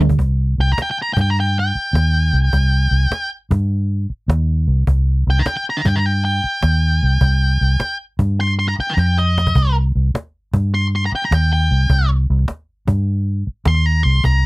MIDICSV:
0, 0, Header, 1, 6, 480
1, 0, Start_track
1, 0, Key_signature, -3, "minor"
1, 0, Tempo, 585366
1, 156, Time_signature, 4, 2, 24, 8
1, 11856, End_track
2, 0, Start_track
2, 0, Title_t, "Lead electric guitar"
2, 0, Program_c, 0, 29
2, 500, Note_on_c, 0, 79, 90
2, 590, Note_off_c, 0, 79, 0
2, 590, Note_on_c, 0, 82, 77
2, 637, Note_off_c, 0, 82, 0
2, 675, Note_on_c, 0, 79, 78
2, 737, Note_off_c, 0, 79, 0
2, 747, Note_on_c, 0, 79, 80
2, 795, Note_off_c, 0, 79, 0
2, 839, Note_on_c, 0, 82, 72
2, 928, Note_off_c, 0, 82, 0
2, 931, Note_on_c, 0, 79, 85
2, 947, Note_off_c, 0, 79, 0
2, 994, Note_on_c, 0, 79, 70
2, 1067, Note_off_c, 0, 79, 0
2, 1067, Note_on_c, 0, 82, 78
2, 1115, Note_off_c, 0, 82, 0
2, 1149, Note_on_c, 0, 79, 75
2, 1287, Note_off_c, 0, 79, 0
2, 1308, Note_on_c, 0, 79, 77
2, 2698, Note_off_c, 0, 79, 0
2, 4349, Note_on_c, 0, 79, 83
2, 4422, Note_on_c, 0, 82, 76
2, 4437, Note_off_c, 0, 79, 0
2, 4473, Note_off_c, 0, 82, 0
2, 4485, Note_on_c, 0, 79, 80
2, 4555, Note_off_c, 0, 79, 0
2, 4565, Note_on_c, 0, 79, 79
2, 4624, Note_off_c, 0, 79, 0
2, 4673, Note_on_c, 0, 82, 78
2, 4730, Note_on_c, 0, 79, 80
2, 4759, Note_off_c, 0, 79, 0
2, 4809, Note_on_c, 0, 79, 74
2, 4814, Note_off_c, 0, 82, 0
2, 4884, Note_on_c, 0, 82, 82
2, 4907, Note_off_c, 0, 79, 0
2, 4967, Note_off_c, 0, 82, 0
2, 4967, Note_on_c, 0, 79, 88
2, 5114, Note_off_c, 0, 79, 0
2, 5123, Note_on_c, 0, 79, 97
2, 6526, Note_off_c, 0, 79, 0
2, 6893, Note_on_c, 0, 84, 91
2, 6989, Note_off_c, 0, 84, 0
2, 7046, Note_on_c, 0, 84, 84
2, 7118, Note_off_c, 0, 84, 0
2, 7121, Note_on_c, 0, 82, 79
2, 7155, Note_off_c, 0, 82, 0
2, 7219, Note_on_c, 0, 79, 88
2, 7294, Note_on_c, 0, 82, 83
2, 7312, Note_off_c, 0, 79, 0
2, 7373, Note_off_c, 0, 82, 0
2, 7373, Note_on_c, 0, 79, 87
2, 7519, Note_off_c, 0, 79, 0
2, 7531, Note_on_c, 0, 75, 84
2, 7989, Note_off_c, 0, 75, 0
2, 8810, Note_on_c, 0, 84, 95
2, 8908, Note_off_c, 0, 84, 0
2, 8985, Note_on_c, 0, 84, 83
2, 9064, Note_off_c, 0, 84, 0
2, 9067, Note_on_c, 0, 82, 88
2, 9088, Note_off_c, 0, 82, 0
2, 9147, Note_on_c, 0, 79, 91
2, 9219, Note_off_c, 0, 79, 0
2, 9219, Note_on_c, 0, 82, 88
2, 9300, Note_off_c, 0, 82, 0
2, 9300, Note_on_c, 0, 79, 82
2, 9444, Note_off_c, 0, 79, 0
2, 9454, Note_on_c, 0, 79, 84
2, 9911, Note_off_c, 0, 79, 0
2, 11215, Note_on_c, 0, 84, 103
2, 11364, Note_off_c, 0, 84, 0
2, 11364, Note_on_c, 0, 82, 86
2, 11506, Note_off_c, 0, 82, 0
2, 11506, Note_on_c, 0, 84, 78
2, 11668, Note_off_c, 0, 84, 0
2, 11687, Note_on_c, 0, 82, 91
2, 11853, Note_off_c, 0, 82, 0
2, 11856, End_track
3, 0, Start_track
3, 0, Title_t, "Overdriven electric guitar"
3, 0, Program_c, 1, 29
3, 10, Note_on_c, 1, 50, 69
3, 11, Note_on_c, 1, 43, 64
3, 145, Note_off_c, 1, 50, 0
3, 146, Note_off_c, 1, 43, 0
3, 11856, End_track
4, 0, Start_track
4, 0, Title_t, "Fingered electric bass"
4, 0, Program_c, 2, 33
4, 0, Note_on_c, 2, 38, 82
4, 121, Note_off_c, 2, 38, 0
4, 153, Note_on_c, 2, 36, 82
4, 456, Note_off_c, 2, 36, 0
4, 477, Note_on_c, 2, 36, 74
4, 623, Note_off_c, 2, 36, 0
4, 957, Note_on_c, 2, 43, 88
4, 1405, Note_off_c, 2, 43, 0
4, 1584, Note_on_c, 2, 39, 87
4, 1890, Note_off_c, 2, 39, 0
4, 1912, Note_on_c, 2, 36, 76
4, 2060, Note_off_c, 2, 36, 0
4, 2072, Note_on_c, 2, 36, 80
4, 2375, Note_off_c, 2, 36, 0
4, 2386, Note_on_c, 2, 36, 71
4, 2537, Note_off_c, 2, 36, 0
4, 2875, Note_on_c, 2, 43, 86
4, 3324, Note_off_c, 2, 43, 0
4, 3511, Note_on_c, 2, 39, 92
4, 3814, Note_off_c, 2, 39, 0
4, 3834, Note_on_c, 2, 36, 72
4, 3981, Note_off_c, 2, 36, 0
4, 3995, Note_on_c, 2, 36, 78
4, 4296, Note_off_c, 2, 36, 0
4, 4321, Note_on_c, 2, 36, 73
4, 4465, Note_off_c, 2, 36, 0
4, 4797, Note_on_c, 2, 43, 83
4, 5245, Note_off_c, 2, 43, 0
4, 5437, Note_on_c, 2, 39, 85
4, 5737, Note_off_c, 2, 39, 0
4, 5763, Note_on_c, 2, 36, 76
4, 5906, Note_off_c, 2, 36, 0
4, 5913, Note_on_c, 2, 36, 80
4, 6215, Note_off_c, 2, 36, 0
4, 6242, Note_on_c, 2, 36, 68
4, 6385, Note_off_c, 2, 36, 0
4, 6717, Note_on_c, 2, 43, 83
4, 7165, Note_off_c, 2, 43, 0
4, 7354, Note_on_c, 2, 41, 86
4, 7802, Note_off_c, 2, 41, 0
4, 7835, Note_on_c, 2, 36, 86
4, 8137, Note_off_c, 2, 36, 0
4, 8162, Note_on_c, 2, 36, 75
4, 8306, Note_off_c, 2, 36, 0
4, 8638, Note_on_c, 2, 43, 85
4, 9086, Note_off_c, 2, 43, 0
4, 9276, Note_on_c, 2, 39, 86
4, 9577, Note_off_c, 2, 39, 0
4, 9600, Note_on_c, 2, 36, 78
4, 9745, Note_off_c, 2, 36, 0
4, 9754, Note_on_c, 2, 36, 88
4, 10057, Note_off_c, 2, 36, 0
4, 10086, Note_on_c, 2, 36, 73
4, 10228, Note_off_c, 2, 36, 0
4, 10557, Note_on_c, 2, 43, 89
4, 11007, Note_off_c, 2, 43, 0
4, 11198, Note_on_c, 2, 39, 91
4, 11500, Note_off_c, 2, 39, 0
4, 11522, Note_on_c, 2, 36, 82
4, 11667, Note_off_c, 2, 36, 0
4, 11672, Note_on_c, 2, 36, 83
4, 11856, Note_off_c, 2, 36, 0
4, 11856, End_track
5, 0, Start_track
5, 0, Title_t, "Cajon"
5, 5, Note_on_c, 9, 38, 54
5, 77, Note_on_c, 9, 36, 78
5, 87, Note_off_c, 9, 38, 0
5, 154, Note_off_c, 9, 36, 0
5, 154, Note_on_c, 9, 36, 93
5, 236, Note_off_c, 9, 36, 0
5, 569, Note_on_c, 9, 38, 29
5, 639, Note_off_c, 9, 38, 0
5, 639, Note_on_c, 9, 38, 104
5, 721, Note_off_c, 9, 38, 0
5, 958, Note_on_c, 9, 36, 100
5, 1040, Note_off_c, 9, 36, 0
5, 1601, Note_on_c, 9, 38, 102
5, 1683, Note_off_c, 9, 38, 0
5, 2006, Note_on_c, 9, 38, 30
5, 2075, Note_on_c, 9, 36, 96
5, 2088, Note_off_c, 9, 38, 0
5, 2157, Note_off_c, 9, 36, 0
5, 2556, Note_on_c, 9, 38, 98
5, 2638, Note_off_c, 9, 38, 0
5, 2879, Note_on_c, 9, 36, 106
5, 2961, Note_off_c, 9, 36, 0
5, 3522, Note_on_c, 9, 38, 103
5, 3604, Note_off_c, 9, 38, 0
5, 3996, Note_on_c, 9, 36, 96
5, 4078, Note_off_c, 9, 36, 0
5, 4476, Note_on_c, 9, 38, 103
5, 4558, Note_off_c, 9, 38, 0
5, 4799, Note_on_c, 9, 36, 97
5, 4881, Note_off_c, 9, 36, 0
5, 5432, Note_on_c, 9, 38, 105
5, 5514, Note_off_c, 9, 38, 0
5, 5912, Note_on_c, 9, 36, 87
5, 5994, Note_off_c, 9, 36, 0
5, 6394, Note_on_c, 9, 38, 99
5, 6476, Note_off_c, 9, 38, 0
5, 6716, Note_on_c, 9, 36, 99
5, 6798, Note_off_c, 9, 36, 0
5, 7360, Note_on_c, 9, 38, 62
5, 7442, Note_off_c, 9, 38, 0
5, 7530, Note_on_c, 9, 38, 56
5, 7612, Note_off_c, 9, 38, 0
5, 7689, Note_on_c, 9, 38, 83
5, 7763, Note_on_c, 9, 36, 78
5, 7771, Note_off_c, 9, 38, 0
5, 7834, Note_off_c, 9, 36, 0
5, 7834, Note_on_c, 9, 36, 101
5, 7916, Note_off_c, 9, 36, 0
5, 8323, Note_on_c, 9, 38, 105
5, 8405, Note_off_c, 9, 38, 0
5, 8639, Note_on_c, 9, 36, 101
5, 8721, Note_off_c, 9, 36, 0
5, 9284, Note_on_c, 9, 38, 111
5, 9366, Note_off_c, 9, 38, 0
5, 9682, Note_on_c, 9, 38, 30
5, 9755, Note_on_c, 9, 36, 88
5, 9764, Note_off_c, 9, 38, 0
5, 9837, Note_off_c, 9, 36, 0
5, 10159, Note_on_c, 9, 38, 32
5, 10233, Note_off_c, 9, 38, 0
5, 10233, Note_on_c, 9, 38, 96
5, 10315, Note_off_c, 9, 38, 0
5, 10558, Note_on_c, 9, 36, 95
5, 10640, Note_off_c, 9, 36, 0
5, 11196, Note_on_c, 9, 38, 103
5, 11278, Note_off_c, 9, 38, 0
5, 11604, Note_on_c, 9, 38, 30
5, 11676, Note_on_c, 9, 36, 94
5, 11686, Note_off_c, 9, 38, 0
5, 11758, Note_off_c, 9, 36, 0
5, 11856, End_track
6, 0, Start_track
6, 0, Title_t, "Muted fingered electric bass strokes"
6, 637, Note_on_c, 9, 29, 38
6, 719, Note_off_c, 9, 29, 0
6, 1437, Note_on_c, 9, 29, 36
6, 1519, Note_off_c, 9, 29, 0
6, 3361, Note_on_c, 9, 29, 36
6, 3443, Note_off_c, 9, 29, 0
6, 5280, Note_on_c, 9, 29, 37
6, 5362, Note_off_c, 9, 29, 0
6, 6401, Note_on_c, 9, 29, 39
6, 6483, Note_off_c, 9, 29, 0
6, 7205, Note_on_c, 9, 29, 37
6, 7287, Note_off_c, 9, 29, 0
6, 9119, Note_on_c, 9, 29, 37
6, 9201, Note_off_c, 9, 29, 0
6, 11046, Note_on_c, 9, 29, 36
6, 11128, Note_off_c, 9, 29, 0
6, 11856, End_track
0, 0, End_of_file